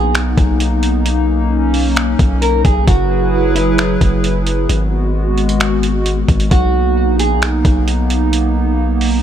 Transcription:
Already playing: A#1 A#3 B3 D#4 G#4
0.09 B1
0.15 finger snap, closed hi-hat
0.38 B1, kick, closed hi-hat
0.60 closed hi-hat
0.83 closed hi-hat
1.06 C#4, closed hi-hat
1.74 open hi-hat
1.96 finger snap, closed hi-hat
2.19 B1, kick, closed hi-hat
2.42 A#4, closed hi-hat
2.65 B1 G#4, kick, closed hi-hat
2.87 F#1 F#3 E4 F#4 G#4 B4, kick, closed hi-hat
3.55 E4, closed hi-hat
3.78 finger snap, closed hi-hat
4.01 F#1, kick, closed hi-hat
4.24 closed hi-hat
4.47 closed hi-hat
4.69 G#1 G#3 B3 F#4, closed hi-hat
5.38 closed hi-hat
5.49 closed hi-hat
5.60 finger snap, closed hi-hat
5.83 closed hi-hat
6.06 closed hi-hat
6.28 G#1, kick, closed hi-hat
6.40 closed hi-hat
6.51 B1 A#3 B3 D#4 F#4, kick, closed hi-hat
7.08 A#1
7.19 G#4, closed hi-hat
7.36 B1
7.42 finger snap, closed hi-hat
7.65 B1, kick, closed hi-hat
7.88 closed hi-hat
8.10 closed hi-hat
8.33 closed hi-hat
9.01 open hi-hat

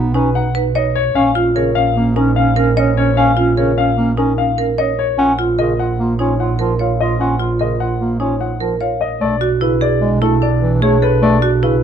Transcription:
Already playing: B1 B3
0.14 C#4 D#4 B4
0.35 D#4 F#5
0.55 D#4 B4
0.75 D#4 C#5 D#5
0.95 C#5
1.15 A#1 C#4 F5
1.35 C#4 F4
1.55 C#3 C#4 A#4 C#5
1.75 C#4 F5
1.96 A#3 C#4
2.16 C#4 D#4 A#4
2.36 C#4 F5
2.56 C#4 A#4
2.77 C#4 C#5 D#5
2.96 C#4 C#5
3.17 C#4 F5
3.37 C#4 F4
3.57 C#3 C#4 A#4 C#5
3.78 C#4 F5
3.97 A#3 C#4
4.17 C#4 D#4 A#4
4.38 C#4 F5
4.58 C#4 A#4
4.78 C#4 C#5 D#5
4.99 C#5
5.18 A#1 C#4 F4 F#5
5.39 F4
5.59 C#3 F4 A#4 D#5
5.79 F4 F#5
5.99 A#3 F4
6.19 C#4 D#4 F4 C#5
6.39 F4 F#5
6.59 F3 F4 A#4
6.79 F4 C#5 F5
7.00 F4 D#5
7.20 C#4 F4 F#5
7.39 F4
7.59 C#3 F4 A#4 D#5
7.80 F4 F#5
8.00 A#3 F4
8.20 C#4 D#4 F4 C#5
8.40 F4 F#5
8.60 F3 F4 A#4
8.80 F4 C#5 F5
9.01 D#5
9.21 B1 A3 D4 D5
9.41 F#4
9.61 C#3 E4 B4
9.81 G#4 D5
10.01 G#3
10.21 A3 E4 A4
10.42 D4 D5
10.62 E3
10.82 A3 G#4 C#5
11.02 A4 B4
11.22 A3 D5
11.42 F#4
11.63 C#3 E4 B4

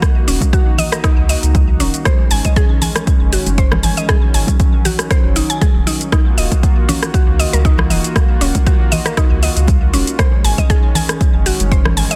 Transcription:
Already playing: D#3 A#3 F#4
0.02 D#4, kick, cross-stick, closed hi-hat, high conga, shaker
0.28 D#1 C#4, open hi-hat, shaker
0.41 kick, closed hi-hat, high conga, shaker
0.53 F#4, kick, closed hi-hat, shaker
0.78 D#5, open hi-hat, low conga, shaker
0.92 A#4, cross-stick, closed hi-hat, shaker
1.04 D#4, kick, cross-stick, closed hi-hat, shaker
1.18 C#2
1.29 D#5, open hi-hat, shaker
1.43 C#2, closed hi-hat, shaker
1.55 kick, closed hi-hat, high conga, shaker
1.80 D#1 C#4, open hi-hat, high conga, shaker
1.94 closed hi-hat, shaker
2.05 G#3 C#4 C5, kick, cross-stick, closed hi-hat, high conga, shaker
2.31 G#1 G#5, open hi-hat, shaker
2.45 D#5, kick, closed hi-hat, high conga, shaker
2.56 G#4, kick, closed hi-hat, shaker
2.82 G#5, open hi-hat, low conga, shaker
2.96 cross-stick, closed hi-hat, shaker
3.07 kick, closed hi-hat, shaker
3.21 F#1
3.33 F#4, open hi-hat, shaker
3.46 F#1, closed hi-hat, high conga, shaker
3.58 C5, kick, closed hi-hat, shaker
3.72 cross-stick, high conga, low conga
3.83 G#1 G#5, open hi-hat, low conga, shaker
3.97 D#5, closed hi-hat, shaker
4.09 F#3 G#4, kick, cross-stick, closed hi-hat, high conga, shaker
4.34 G#1 G#5, open hi-hat, shaker
4.47 kick, closed hi-hat, high conga, shaker
4.60 kick, closed hi-hat, shaker
4.85 F#4, open hi-hat, low conga, shaker
4.99 cross-stick, closed hi-hat, shaker
5.11 C5, kick, cross-stick, closed hi-hat, shaker
5.24 F#1
5.36 D#4, open hi-hat, shaker
5.50 G#5, closed hi-hat, shaker
5.61 G#4, kick, closed hi-hat, high conga, shaker
5.75 D#1
5.87 D#4, open hi-hat, high conga, shaker
6.01 closed hi-hat, shaker
6.12 A#3 D#4 F4 F#4, kick, cross-stick, closed hi-hat, high conga, shaker
6.38 D#1 D#5, open hi-hat, shaker
6.52 kick, closed hi-hat, high conga, shaker
6.63 kick, closed hi-hat, shaker
6.89 C#4, open hi-hat, low conga, shaker
7.03 cross-stick, closed hi-hat, shaker
7.14 F#4, kick, closed hi-hat, shaker
7.28 C#2
7.39 D#5, open hi-hat, shaker
7.53 C#2 A#4, closed hi-hat, high conga, shaker
7.65 D#4, kick, closed hi-hat, shaker
7.78 cross-stick, high conga, low conga
7.90 D#1 D#5, open hi-hat, low conga, shaker
8.04 closed hi-hat, shaker
8.16 kick, cross-stick, closed hi-hat, high conga, shaker
8.41 D#1 C#4, open hi-hat, shaker
8.55 kick, closed hi-hat, high conga, shaker
8.66 F#4, kick, closed hi-hat, shaker
8.92 D#5, open hi-hat, low conga, shaker
9.06 A#4, cross-stick, closed hi-hat, shaker
9.17 D#4, kick, cross-stick, closed hi-hat, shaker
9.31 C#2
9.43 D#5, open hi-hat, shaker
9.56 C#2, closed hi-hat, shaker
9.68 kick, closed hi-hat, high conga, shaker
9.94 D#1 C#4, open hi-hat, high conga, shaker
10.07 closed hi-hat, shaker
10.19 D#3 G#3 C#4 C5, kick, cross-stick, closed hi-hat, high conga, shaker
10.44 G#1 G#5, open hi-hat, shaker
10.58 D#5, kick, closed hi-hat, high conga, shaker
10.70 G#4, kick, closed hi-hat, shaker
10.95 G#5, open hi-hat, low conga, shaker
11.09 cross-stick, closed hi-hat, shaker
11.21 kick, closed hi-hat, shaker
11.34 F#1
11.46 F#4, open hi-hat, shaker
11.60 F#1, closed hi-hat, high conga, shaker
11.72 C5, kick, closed hi-hat, shaker
11.85 cross-stick, high conga, low conga
11.97 G#1 G#5, open hi-hat, low conga, shaker
12.11 D#5, closed hi-hat, shaker

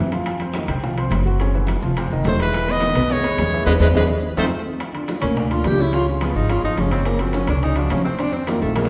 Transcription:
Already playing: F2
0.12 F3 F4 F5, high bongo, high conga, high timbale, maracas
0.26 high bongo, high conga, high timbale, maracas
0.40 C4 C5 C6, high bongo, high conga, high timbale, maracas
0.54 D#3 D#4 D#5, high bongo, high conga, high timbale, low timbale, maracas
0.68 C2 C3 C4 C5, high bongo, high conga, low conga, high timbale, maracas
0.82 F3 F4 F5, high bongo, high conga, low conga, maracas
0.97 C4 C5 C6, high conga, high timbale, maracas
1.11 F#1, high bongo, low bongo, high conga, high timbale, low timbale, maracas
1.25 F#3 F#4 F#5, high bongo, maracas
1.39 C#3 C#4 C#5, high bongo, high conga, high timbale, maracas
1.53 E3 E4 E5, high bongo, high conga, maracas
1.67 high bongo, high conga, high timbale, low timbale, maracas
1.81 F1 F3 F4 F5, high bongo, high conga, maracas
1.96 C3 C4 C5, high bongo, high conga, high timbale, maracas
2.10 F1 D#3 D#4 D#5, high conga, maracas
2.24 E1 A3 C5, high bongo, low bongo, high conga, high timbale, low timbale, maracas
2.39 E3 G#3 E4 B4 E5, high bongo, high conga, high timbale, maracas
2.53 high bongo, high conga, high timbale, maracas
2.67 B3 B4 B5, high bongo, high conga, high timbale, maracas
2.71 D#5
2.80 D#3 D#4 D#5, high bongo, high conga, high timbale, low timbale, maracas
2.95 B1 B2 B3 B4, high conga, low conga, high timbale, maracas
3.10 E3 G#3 E4 C#5 E5, high bongo, high conga, low conga, maracas
3.23 B3 B4 B5, high conga, high timbale, maracas
3.37 E2, high bongo, low bongo, high conga, high timbale, low timbale, maracas
3.52 E3 E4 E5, high bongo, high conga, maracas
3.65 E2 G#3 B3 D4 E4 B4, low bongo, high conga, high timbale, maracas
3.80 E2 G#3 B3 D4 E4 B4, low bongo, high conga, high timbale, maracas
3.94 E2 G#3 B3 D4 E4 B4, low bongo, high conga, high timbale, maracas
4.37 F2 A3 C4 D#4 F4 C5, low bongo, high conga, high timbale, maracas
4.80 high bongo, high conga, high timbale, maracas
4.94 D3 D4 F4, high bongo, high conga, high timbale, maracas
5.08 high bongo, high conga, high timbale, low timbale, maracas
5.21 D2 A#2 A#3 C#4 A#4, high bongo, high conga, low conga, high timbale, maracas
5.36 D4, high bongo, high conga, low conga, maracas
5.50 D3 D4 F4, high conga, high timbale, maracas
5.64 C#2 G4, high bongo, low bongo, high conga, high timbale, low timbale, maracas
5.78 C#3 C#4 E4 C#5, high bongo, high conga, maracas
5.92 C#3 C#4 F4 C#5, high bongo, high conga, high timbale, maracas
6.06 G#3, high bongo, high conga, maracas
6.20 F3 B3 F4 G#4, high bongo, high conga, high timbale, low timbale, maracas
6.35 G#1 D#4, high bongo, high conga, maracas
6.49 C#3 C#4 F4 C#5, high bongo, high conga, high timbale, maracas
6.63 G1 F3 D#4 F4 G#4, high conga, maracas
6.77 F#1 C#4, high bongo, low bongo, high conga, high timbale, low timbale, maracas
6.91 C#3 C4 C#4 C#5, high bongo, high timbale, maracas
7.05 A#3, high bongo, high conga, high timbale, maracas
7.19 F3 C4 F4 F#4, high bongo, high conga, high timbale, maracas
7.33 C#4, high bongo, high conga, high timbale, low timbale, maracas
7.47 C#2 C#3 C#4 D4 C#5, high bongo, high conga, low conga, high timbale, maracas
7.62 D#4, high bongo, high conga, maracas
7.76 F3 D4 F4 F#4, high conga, high timbale, maracas
7.90 F2 C#4, high bongo, low bongo, high conga, high timbale, low timbale, maracas
8.04 C3 C4 C5, high bongo, maracas
8.19 C3 C4 D4 C5, high bongo, high conga, high timbale, maracas
8.33 C4, high bongo, high conga, maracas
8.47 D#3 A#3 D#4 F4, high bongo, high conga, high timbale, low timbale, maracas
8.62 A#1 A3, high bongo, high conga, maracas
8.75 A#2 G#3 A#3 A#4, high bongo, high conga, high timbale, maracas
8.85 high conga

